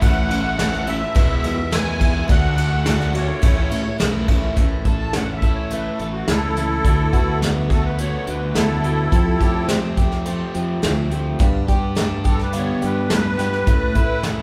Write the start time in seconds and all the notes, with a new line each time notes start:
0.01 A1 A2 E3 A3 C#4 E4 F#5, kick, ride
0.29 E3 A3 C#4 E4, snare, ride
0.43 A3 C#4 E4
0.57 A2 E3 A3 C#4 E4, snare, ride
0.73 snare
0.86 E3 A3 C#4 E4 E5, ride
1.01 muted overdriven electric guitar stroke
1.15 E1 E2 B2 E3 G#3 B3 E4, kick, ride
1.28 E3 G#3 B3 E4
1.43 E2 E3 G#3 B3 E4, ride
1.57 muted overdriven electric guitar stroke
1.71 E2 B2 E3 G#3 B3 E4 G#5, snare, ride
2.00 E3 G#3 B3 E4, kick, ride
2.13 E3 G#3 B3 E4
2.28 D2 D3 A3 D4 F#4 F#5, kick, ride
2.57 D3 A3 D4 F#4, ride
2.71 A3 D4 F#4
2.85 D3 A3 D4 F#4 F#5, snare, ride
3.00 snare
3.13 D3 A3 D4 F#4 C#5, ride
3.29 muted overdriven electric guitar stroke
3.42 A1 A2 E3 A3 C#4 E4, kick, ride
3.56 A3 C#4 E4
3.70 A2 A3 C#4 E4, ride
3.85 muted overdriven electric guitar stroke
3.98 B1 A2 E3 A3 C#4 E4, snare, ride
4.28 E3 A3 C#4 E4, kick, ride
4.42 A3 C#4 E4
4.56 A1 A2 E3 A3 C#4 E4, kick, closed hi-hat
4.85 A1 A3 C#4 E4 A4, kick, closed hi-hat
4.99 A5
5.13 E3 A3 C#4 E4 F#5, snare, closed hi-hat
5.36 E5
5.42 A3 C#4 E4 A4, kick, closed hi-hat
5.54 C#5
5.70 A2 E3 A3 C#4 E4 B4, closed hi-hat
5.92 A4
5.99 A1 E3 A3 C#4 E4, closed hi-hat
6.12 F#4
6.28 C#2 E3 A3 C#4 E4 A4, snare, closed hi-hat
6.56 E3 A3 C#4 E4, snare, closed hi-hat
6.85 D2 D3 A3 B3 F#4, kick, closed hi-hat
7.13 D2 A3 B3 F#4, kick, closed hi-hat
7.42 D3 A3 B3 F#4, snare, closed hi-hat
7.68 B3 F#4 G#4 A4, kick, closed hi-hat
7.72 A3
7.86 B4
7.98 D3 A3 B3 F#4 C#5, closed hi-hat
8.27 D2 D3 A3 B3 F#4 B4, closed hi-hat
8.55 D2 D3 A3 B3 E4 F#4 A4, snare, closed hi-hat
8.83 D3 B3 F#4, closed hi-hat
8.87 A3
9.12 F2 F3 A3 C4 G4, kick, closed hi-hat
9.41 F2 A3 C4 G4, kick, closed hi-hat
9.68 F3 A3 C4 G4, snare, closed hi-hat
9.97 A3 C4 G4, kick, closed hi-hat
10.12 snare
10.26 F3 A3 C4 G4, closed hi-hat
10.54 F2 F3 A3 C4 G4, closed hi-hat
10.82 D2 F3 A3 C4 G4, snare, closed hi-hat
11.11 F3 A3 C4 G4, closed hi-hat
11.39 G2 D3 G3 B3 D4 G4, kick, closed hi-hat
11.68 G2 G3 B3 D4 G4, kick, closed hi-hat
11.95 G3 B3 D4 G4, snare, closed hi-hat
12.23 G3 B3 D4 G4 G#4, kick, closed hi-hat
12.28 A4
12.39 B4, snare
12.53 G2 D3 G3 B3 D4 G4, closed hi-hat
12.57 C#5
12.81 G2 G3 B3 D4 G4, closed hi-hat
12.86 B4
13.10 G2 G3 B3 D4 G4, snare, closed hi-hat
13.14 B4
13.38 G3 B3 D4 G4, snare, closed hi-hat
13.53 snare
13.67 A2 E3 A3 C#4 E4, kick, closed hi-hat
13.95 A2 A3 C#4 E4, kick, closed hi-hat
14.23 E3 A3 C#4 E4, snare, closed hi-hat